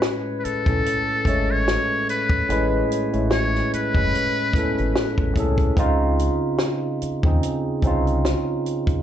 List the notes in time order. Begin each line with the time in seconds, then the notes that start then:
Already playing: A2 G#3 C#4 B4
0.02 snare, closed hi-hat
0.39 B4
0.45 A4, muted fingered electric bass stroke, closed hi-hat
0.65 B1 A2 A3 C#4 A4, kick, closed hi-hat
0.86 closed hi-hat
1.25 G#1 G#3 A3 C#4, kick, closed hi-hat
1.29 C#5
1.51 C#5
1.68 snare, closed hi-hat
2.09 B4, closed hi-hat
2.30 kick
2.48 A1 A2 G#3 C#4, closed hi-hat
2.52 B4
2.92 closed hi-hat
3.11 A1 A2 G#3 C#4 E4, closed hi-hat
3.31 C#5, snare, closed hi-hat
3.55 snare
3.73 B4, muted fingered electric bass stroke, closed hi-hat
3.94 F#1 A2 G#3 C#4 B4, kick
4.15 closed hi-hat
4.53 A2 B3 G#4, muted fingered electric bass stroke, kick, closed hi-hat
4.58 A4
4.63 C#4
4.78 G#1, closed hi-hat
4.96 snare, closed hi-hat
5.18 A1, kick
5.36 C2 A2 C#4 G#4, kick, closed hi-hat
5.40 A4
5.58 kick, closed hi-hat
5.76 C#2 C#3 C4 D#4 F4, kick, closed hi-hat
6.19 closed hi-hat
6.59 snare, closed hi-hat
7.02 muted fingered electric bass stroke, closed hi-hat
7.23 D#2 C#3 C4 D#4, kick
7.28 G#4
7.43 closed hi-hat
7.82 C2 C4 C#4 D#4, kick, closed hi-hat
7.87 F4
8.07 closed hi-hat
8.25 snare, closed hi-hat
8.66 closed hi-hat
8.87 kick, closed hi-hat